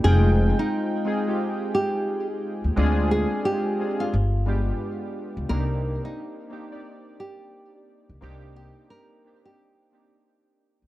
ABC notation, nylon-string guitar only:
X:1
M:4/4
L:1/16
Q:"Swing 16ths" 1/4=88
K:Cm
V:1 name="Nylon-string guitar"
A3 E6- E G3 z3 | z2 A2 G3 F4- F z4 | B3 E6- E G3 z3 | z2 G2 B3 G4- G z4 |]